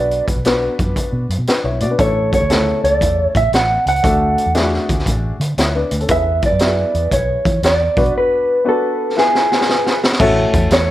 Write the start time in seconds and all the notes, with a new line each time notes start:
Already playing: B1 B3 D4 F#4 B4 D5
0.11 closed hi-hat
0.28 kick, closed hi-hat
0.36 B1
0.45 B3 D4 F#4 B4, snare, closed hi-hat
0.79 F#2, kick, closed hi-hat
0.96 kick, closed hi-hat
1.13 B2
1.29 F#2, closed hi-hat
1.38 B2
1.47 D4 B4, muted fingered electric bass stroke, snare, closed hi-hat
1.64 B1 E4 C#5
1.80 B2 F#4 D5, closed hi-hat
1.91 D4 B4
1.98 A1 A3 C#4 E4 A4 C#5, kick, closed hi-hat
2.33 C#5, kick, closed hi-hat
2.41 D2
2.50 C#3 A3 E4 A4, snare, closed hi-hat
2.84 C#2 D5, closed hi-hat
3.01 E2, kick, closed hi-hat
3.23 C#5
3.35 A2 E5, kick, closed hi-hat
3.52 A1 F#5, snare, closed hi-hat
3.86 C#2 F#5, closed hi-hat
3.96 closed hi-hat
4.03 D2 A3 D4 F#4 A4, kick, closed hi-hat
4.38 closed hi-hat
4.46 E2
4.55 A3 D4 E4 G#4, snare, closed hi-hat
4.61 F#4
4.74 snare
4.89 D2, kick, closed hi-hat
4.99 snare
5.06 A1, kick, closed hi-hat
5.40 D3, closed hi-hat
5.58 D2 E4 C#5, snare, closed hi-hat
5.75 D4 B4
5.91 D2, closed hi-hat
6.00 C#4 A4, closed hi-hat
6.08 E2 B3 E4 G#4 B4 E5, kick, closed hi-hat
6.42 D5, kick, closed hi-hat
6.52 F#2
6.59 B3 E4 F#4 B4, snare, closed hi-hat
6.67 G#4
6.94 E2, closed hi-hat
7.11 B1 C#5, kick, closed hi-hat
7.45 E3, kick, closed hi-hat
7.63 E2 D5, snare, closed hi-hat
7.96 B1 B3 D4 F#4 B4, kick, open hi-hat
8.06 closed hi-hat
8.18 B4
8.64 B3 D4 F#4 B4
8.69 A4
9.17 B3 E4 G#4 B4, snare
9.35 snare
9.52 snare
9.61 snare
9.69 snare
9.86 snare
10.04 snare
10.12 snare
10.20 A1 A3 C#4 E4 F#4 A4, kick, crash
10.54 E2, kick, closed hi-hat
10.71 E2 C#5, snare, closed hi-hat